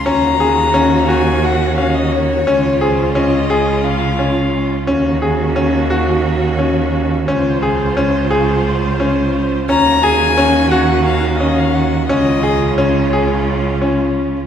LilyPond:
<<
  \new Staff \with { instrumentName = "Violin" } { \time 7/8 \key des \major \tempo 4 = 87 bes''4. aes''8 ges''8 f''16 ees''16 des''8~ | des''8 c''8 ees''4 f''4 r8 | r2. r8 | r2. r8 |
bes''8 aes''4 ges''8 f''8 ees''16 f''16 ges''8 | ees''4 des''4 r4. | }
  \new Staff \with { instrumentName = "Grand piano" } { \time 7/8 \key des \major des'8 aes'8 des'8 ges'4 des'4 | des'8 aes'8 des'8 aes'4 des'4 | des'8 aes'8 des'8 ges'4 des'4 | des'8 aes'8 des'8 aes'4 des'4 |
des'8 aes'8 des'8 ges'4 des'4 | des'8 aes'8 des'8 aes'4 des'4 | }
  \new Staff \with { instrumentName = "String section" } { \time 7/8 \key des \major <ees des' ges'>2.~ <ees des' ges'>8 | <des des' f'>2.~ <des des' f'>8 | <ees des' ges'>2.~ <ees des' ges'>8 | <des f' c''>2.~ <des f' c''>8 |
<ees des' ges'>2.~ <ees des' ges'>8 | <des des' f'>2.~ <des des' f'>8 | }
  \new Staff \with { instrumentName = "Cello" } { \clef bass \time 7/8 \key des \major ees,2.~ ees,8 | des,2.~ des,8 | ees,2.~ ees,8 | des,2.~ des,8 |
ees,2.~ ees,8 | des,2.~ des,8 | }
>>